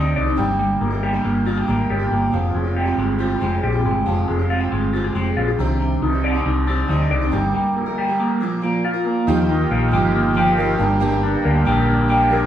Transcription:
Already playing: D2 C3 G3 C4 D4 D#4 G4 D5
0.16 C2 D5
0.26 G3 C4 D4 G4
0.37 G1 G2 D3 G3 A#3 D4 G4
0.59 G3
0.81 G1 A#3
0.90 G3 A#3 D4 G4
1.03 G4
1.13 G3 A#3 D4 G4
1.25 G1 A#3
1.45 G3 A#3 D4 F4 G4
1.58 G4
1.67 G#1 G3 A#3 D4 G4
1.90 G1 G4
1.99 G3 A#3 D4 G4
2.12 G1 A#3
2.32 F1 F3 G#3 C4 F4 G4
2.55 F1 G#3
2.64 C4 F4 G4
2.76 G4
2.86 C4 F4 G4
2.98 G1 G#3
3.18 G#3 C4 F4 G4
3.40 F1 G#3 C4 F4 G4
3.63 A#1 G4
3.72 C4 F4 G4
3.85 G1 G#3
4.06 F1 F3 G#3 C4 F4 G4
4.28 F1 G#3
4.39 C4 F4 G4
4.50 F4
4.60 C4 F4 G4
4.72 G1 G#3
4.93 G#3 C4 F4 G4
5.04 G4
5.15 F1 G#3 C4 F4 G4
5.37 A#1 F4
5.48 C4 F4 G4
5.59 C2 C3 D#3 G3 C4 D4 G4
5.80 C3
6.02 C2 D#4
6.13 G3 C4 D4 G4
6.24 D5
6.34 G3 C4 D4 G4
6.46 C2 D#4
6.67 G3 C4 D4 G4 D5
6.88 D2 G3 C4 D4 D#4 G4
7.11 C2 D5
7.21 G3 C4 D4 G4
7.31 G1 G2 D3 G3 A#3 G4 A#4
7.54 G3
7.76 A#3
7.86 G3 A#3 G4 A#4
7.98 G4
8.08 G3 A#3 G4 A#4
8.20 A#3
8.40 A#2 F3 A#3 F4 A#4
8.62 F3 A#3 F4 A#4
8.85 F4
8.93 F3 A#3 F4 A#4
9.06 A#3
9.27 D#2 D#3 F3 A#3 D#4 F4 G4
9.38 A#3 F4 G4
9.49 D#4
9.71 A#1 A#3
9.91 G1 F3 A#3 F4 G4
10.15 A#3
10.35 F3 A#3 F4 G4
10.57 F3 A#3 F4 G4
10.78 G1 G2 G3 A#3 D4 G4
11.00 G2 D3 G3 A#3 D4 G4
11.11 G3 A#3 D4 G4
11.23 D4
11.45 D2 A#3
11.65 A#1 G3 A#3 D4 G4
11.88 A#3
12.08 G3 A#3 D4 G4
12.30 G3 A#3 D4 G4

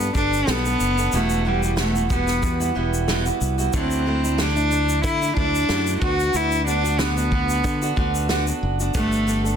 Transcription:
Already playing: B3
0.00 B3 D4 A4, shaker
0.14 G1 G3 B3 D4 A4, kick, shaker
0.33 shaker
0.47 B1 G3 B3 D4 A4, snare, shaker
0.65 B3 D4 A4, shaker
0.80 F#1, shaker
0.98 B3 D4 A4, shaker
1.12 E1 E2 B2 G3 A3 B3 E4 F#4, shaker
1.30 shaker
1.45 G3 B3 E4 F#4
1.63 G3 B3 E4 F#4, shaker
1.77 E2 B2 G3 A3 B3 E4 F#4, snare, shaker
1.95 G3 B3 E4 F#4, shaker
2.10 G3 B3 E4 F#4, kick, shaker
2.28 snare, shaker
2.43 E2, kick, shaker
2.60 G3 B3 E4 F#4, shaker
2.75 E1 G3 B3 E4 F#4
2.94 shaker
3.08 E2 B2 G3 B3 E4 F#4, snare, shaker
3.26 G3 B3 E4 F#4, shaker
3.41 C2, shaker
3.58 G3 B3 E4 F#4, shaker
3.73 D2 D3 F#3 A3 C4 D4 E4, kick, shaker
3.91 shaker
4.06 F#3 A3 D4 E4
4.24 A3 D4 E4, shaker
4.38 D3 F#3 A3 D4 E4, snare, shaker
4.56 A3 D4 E4, shaker
4.71 F#3 A3 D4 E4, shaker
4.89 shaker
5.04 D3 E4, kick, shaker
5.21 A3 D4 E4, shaker
5.36 D2 F#3 A3 D4 E4, kick
5.55 shaker
5.69 F#2 D3 F#3 A3 D4 E4, snare, shaker
5.87 shaker
6.01 D2 D3 B3 D4 F#4, kick
6.20 shaker
6.34 D2 E4, shaker
6.52 shaker
6.66 D3 B3 D4 F#4, shaker
6.83 B3 D4 F#4, shaker
6.98 D3 B3 D4 F#4, snare, shaker
7.16 B3 D4 F#4, shaker
7.31 D3 B3 D4 F#4, kick
7.49 shaker
7.64 D3, kick, shaker
7.82 B3 D4 F#4, shaker
7.96 D2 D3 B3 D4 F#4, kick
8.15 shaker
8.29 D3 B3 D4 F#4, snare, shaker
8.47 B3 D4 F#4, shaker
8.63 F#1
8.80 B3 D4 F#4, shaker
8.94 G1 G3 A3 B3 D4 A4, kick, shaker
9.12 shaker
9.26 G3 B3 D4 A4, shaker
9.44 B3 D4 A4, shaker

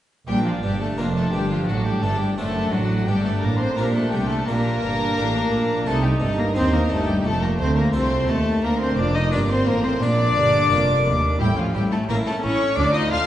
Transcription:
0.27 A#1 A#2 G3 D4 G4 G5
0.45 F3 F4 F5
0.63 G1 G2 G3 G4 G5
0.81 A3 A4 A5
0.97 F1 F2 A#3 D4 F4 A#4 A#5
1.14 A3 A4 A5
1.32 G1 G2 G3 G4 G5
1.50 F3 F4 F5
1.67 A1 A2 F#3 D4 F#4 F#5
1.85 G3 G4 G5
2.02 G1 G2 A3 A4 A5
2.20 G3 G4 G5
2.36 F#1 F#2 A3 C4 D4 F#4 A4 A5
2.70 A1 A2 F#3 F#4 F#5
3.06 G1 G2 G3 D4 G4 G5
3.24 A3 A4 A5
3.42 A1 A2 A#3 A#4 A#5
3.58 C4 C5 C6
3.75 A#1 A#2 A#3 D4 G4 A#4 A#5
3.79 A#3
3.94 A3 A4 A5
4.10 C2 C3 G3 G4 G5
4.28 A3 A4 A5
4.44 A#1 A#2 D4 A#4 A#5
4.48 A#3 D4 G4
4.82 G1 G2
5.17 A1 A2 A#3 D4 G4
5.51 A#1 A#2
5.85 C2 C3 A3 D#4 A4 A5
6.04 G3 G4 G5
6.20 G1 G2 A3 A4 A5
6.38 A#3 A#4 A#5
6.55 D#2 C4 D#4 G4 C5 C6
6.72 A#3 A#4 A#5
6.89 G1 G2 A3 A4 A5
7.07 G3 G4 G5
7.23 F1 F2 A3 A4 A5
7.41 A#3 A#4 A#5
7.58 D2 C5 C6
7.63 C4
7.76 A#3 A#4 A#5
7.92 C2 A3 C4 F4 A4 C5 C6
7.96 C4
8.27 D#2 A3 A4 A5
8.62 D2 A#3 A#4 A#5
8.79 C4 C5 C6
8.97 F1 F2 D4 D5 D6
9.14 D#4 D#5 D#6
9.31 G1 G2 A#3 D4 F4 A#4 D5 D6
9.49 C4 C5 C6
9.67 A1 A2 A#3 A#4 A#5
9.84 C4 C5 C6
10.01 A#1 A#2 A#3 D4 F4 A#4 D5 D6
10.36 G1 G2
10.70 F1 F2 A#3 F4 A#4
11.05 D#2
11.39 A1 A2 G3 E4 G4 G5
11.57 F3 C#4 F4 F5
11.74 A1 A2 G3 E4 G4 G5
11.92 A3 C#4 A4 A5
12.09 A1 A2 A#3 C#4 E4 A4 A#4 A#5
12.26 A3 C#4 A4 A5
12.42 A1 A2 C#4 E4 C#5 C#6
12.61 C#4
12.77 D2 D4 D5 D6
12.94 D#4 F4 D#5 D#6
13.11 D2 D4 F4 F5 F6

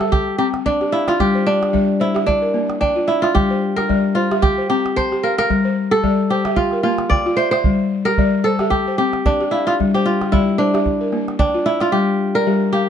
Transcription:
Already playing: A4 C5
0.00 G4 E5, calabash click
0.12 G4, calabash thump, calabash click
0.28 calabash click
0.38 C4 G4
0.54 calabash click
0.66 D4 A5, calabash thump
0.81 G4, calabash click
0.92 E4 F5
1.08 F4 F5, calabash click
1.20 G3 G4, calabash thump
1.35 C5
1.47 D4, calabash click
1.61 G4, calabash click
1.73 G3 D5, calabash thump
2.00 E4 C5
2.14 G4 E5, calabash click
2.27 D4, calabash thump
2.42 A#4
2.54 A#3
2.70 calabash click
2.81 D4 G5, calabash thump
2.96 F4
3.08 E4 E5, calabash click
3.22 F4 E5, calabash click
3.35 G3 G4, calabash thump
3.50 C5
3.76 G4 A#4, calabash click
3.89 G3 D5, calabash thump
4.15 F4 C5
4.31 G4 E5, calabash click
4.42 G4, calabash thump, calabash click
4.58 C5, calabash click
4.70 C4 G4
4.86 calabash click
4.96 C5 A5, calabash thump
5.12 G4, calabash click
5.23 A#4 F5
5.38 A#4 F5, calabash click
5.50 G3, calabash thump
5.65 C5
5.91 G4 A4, calabash click
6.04 G3 D5, calabash thump
6.30 G4 C5
6.45 G4 E5, calabash click
6.56 F4, calabash thump, calabash click
6.71 A#4, calabash click
6.83 A#3 F4
6.98 calabash click
7.10 D5 G5, calabash thump
7.26 F4, calabash click
7.37 C5 E5
7.51 C5 E5, calabash click
7.64 G3, calabash thump
8.05 G4 A#4, calabash click
8.18 G3 D5, calabash thump
8.44 A4 C5
8.59 G4 E5, calabash click
8.70 G4, calabash thump, calabash click
8.86 C5, calabash click
8.98 C4 G4
9.13 calabash click
9.26 D4 A5, calabash thump
9.40 G4, calabash click
9.51 E4 F5
9.67 F4 F5, calabash click
9.80 G3, calabash thump
9.94 G4 C5
10.06 F4
10.21 G4, calabash click
10.32 G3 E4 D5, calabash thump
10.58 D4 C5
10.74 G4 E5, calabash click
10.86 calabash thump
11.01 A#4
11.12 A#3, calabash click
11.28 calabash click
11.39 D4 G5, calabash thump, calabash click
11.54 F4
11.66 E4 E5, calabash click
11.81 F4 E5, calabash click
11.92 G3 G4
12.35 A#4 D5
12.47 G3 G4
12.73 G4 F5

